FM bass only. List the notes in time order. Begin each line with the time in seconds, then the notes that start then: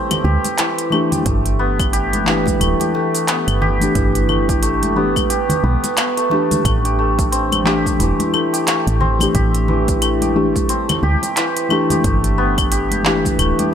0.24 D2
1.26 G1
2.61 D1
3.48 G1
3.95 G1
5.64 B1
6.65 A1
8.00 E1
8.87 A1
9.35 A1
11.03 D2
12.04 G1
13.39 D1